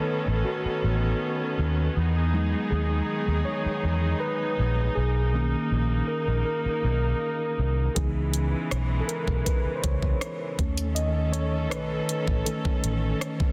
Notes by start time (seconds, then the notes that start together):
Already playing: D#3 A3 B3 C#4 A4 B4 C#5
0.28 A1
0.45 F#4
0.65 muted fingered electric bass stroke
0.84 A1
1.59 D#2
1.96 E2 D#3 D#4 G#4
2.33 F#3 G#3 D#4
2.70 D#2 G#4
3.28 D#2
3.45 C#5
3.66 muted fingered electric bass stroke
3.84 E2
4.20 B4
4.59 A#1
4.95 B1 A#3 G#4
5.33 D#3 A#3 C#4
5.72 A#1
6.08 A#4
6.28 A#1
6.45 A#4
6.65 muted fingered electric bass stroke
6.84 B1
7.59 C2
7.95 C#2 C#3 E3 G#3 B3 D#4 G#4, kick, closed hi-hat
8.34 closed hi-hat
8.71 B1, cross-stick, closed hi-hat
9.00 A4
9.08 A#4, closed hi-hat
9.27 B1, kick
9.45 B4, kick, closed hi-hat
9.65 muted fingered electric bass stroke
9.76 C5
9.83 C#2 C#5, kick, closed hi-hat
10.03 kick
10.21 cross-stick, closed hi-hat
10.59 D#2 D#3 A3 C#4 A4, kick, closed hi-hat
10.77 closed hi-hat
10.95 D#5, closed hi-hat
11.33 C#5, closed hi-hat
11.70 B1 B4, cross-stick, closed hi-hat
12.09 closed hi-hat
12.28 A1, kick
12.45 D#3 A3 C#4 A4, closed hi-hat
12.65 muted fingered electric bass stroke, kick
12.84 A1, closed hi-hat
13.21 cross-stick, closed hi-hat
13.40 kick